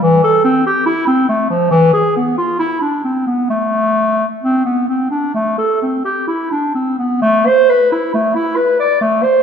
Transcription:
0.02 E3
0.24 A4
0.44 C4
0.66 G4
0.86 E4
1.07 C4
1.29 A3
1.50 F3
1.71 E3
1.93 G#4
2.16 B3
2.38 F4
2.59 E4
2.81 D4
3.04 C4
3.27 B3
3.50 A3
4.42 C4
4.65 B3
4.88 C4
5.11 D4
5.34 A3
5.58 A4
5.82 C4
6.05 G4
6.28 E4
6.51 D4
6.75 C4
6.99 B3
7.22 A3
7.46 C5
7.69 B4
7.92 E4
8.14 A3
8.35 E4
8.56 B4
8.80 D5
9.01 A3
9.23 C5

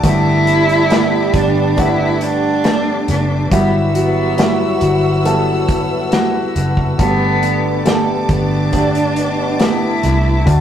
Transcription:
Already playing: D4 F#4 A5 D6
0.03 G1 G2 G3 A3 B3 E4 G4 A4 B4, kick, closed hi-hat
0.47 B3, closed hi-hat
0.69 closed hi-hat
0.90 A3 B3 G4 A4, snare, closed hi-hat
1.34 G1 B3 D4, kick, closed hi-hat
1.77 A3 B3 D4 E4 F#5, kick, closed hi-hat
2.21 D4, closed hi-hat
2.64 A3 B3 G4, snare, closed hi-hat
3.08 F#1 D4, snare, closed hi-hat
3.50 G1 G2 F#3 G3 B3 E4 F#4 E5 F#5 E6, kick, closed hi-hat
3.95 B3 F#4, closed hi-hat
4.37 G3 E4 F#4, snare, closed hi-hat
4.81 G1 F#4, closed hi-hat
5.24 G3 B3 E4 A4, closed hi-hat
5.69 kick, closed hi-hat
6.11 G3 E4 F#4, snare, closed hi-hat
6.56 F#1, closed hi-hat
6.77 kick
6.99 G1 G2 D3 G3 A3 B3 D4 F#4 G4 A4 A5 D6, kick, closed hi-hat
7.07 G4
7.42 B3, closed hi-hat
7.85 A3 B3 G4 A4, snare, closed hi-hat
8.29 G1 B3 D4, kick, closed hi-hat
8.72 A3 B3 D4 G4, kick, closed hi-hat
8.95 closed hi-hat
9.16 B2 B3, closed hi-hat
9.59 A3 B3 E4 G4, snare, closed hi-hat
10.03 C2, snare, closed hi-hat
10.45 D2 D3 A3 D4 F#4 D5, kick, closed hi-hat

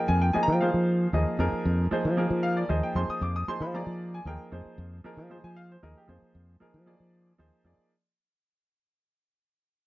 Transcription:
Already playing: F3 A#3 D#4 G#4 A#4
0.08 F2 G#5
0.22 G5
0.33 F3 A#3 D#4 G#4 D#5 G#5, muted fingered electric bass stroke
0.43 A#5
0.48 F3
0.52 G5
0.61 F3 A#3 D#4 G#4 C5 F5
0.74 F3
1.13 D#2 F3 A#3 D#4 G#4 D#5
1.39 F2 F3 A#3 D#4 G#4 A#4
1.52 muted fingered electric bass stroke
1.65 F2
1.91 F3 A#3 D#4 G#4 C5, muted fingered electric bass stroke
2.05 F3
2.17 F3 A#3 D#4 G#4 A#4
2.30 F3
2.43 F5
2.57 D5
2.69 D#2 F3 A#3 D#4 G#4 C5 D#5
2.83 G5
2.95 F2 F3 A#3 D#4 G#4 C5 C6
3.09 D#6, muted fingered electric bass stroke
3.21 F2 D6
3.36 D#6
3.48 F3 A#3 D#4 G#4 C5 C6, muted fingered electric bass stroke
3.60 F3 B5
3.74 F3 A#3 D#4 G#4 D5 A#5
3.86 F3
4.14 G#5
4.25 D#2 F3 A#3 D#4 G#4 A#4 G5
4.52 F2 F3 A#3 D#4 G#4 C5
4.65 muted fingered electric bass stroke
4.78 F2
5.04 F3 A#3 D#4 G#4 A#4, muted fingered electric bass stroke
5.17 F3
5.30 F3 A#3 D#4 G#4 C5
5.44 F3 G#5
5.56 F5
5.72 C5
5.83 D#2 F3 A#3 D#4 G#4 A#4 D#5
5.97 G4
6.08 F2 F3 A#3 D#4 G#4 C5
6.35 F2
6.60 F3 A#3 D#4 G#4 A#4, muted fingered electric bass stroke
6.74 F3
6.86 F3 A#3 D#4 G#4 D5
7.00 F3
7.38 D#2 F3 A#3 D#4 G#4 C5
7.64 F2 F3 A#3 D#4 G#4 D5

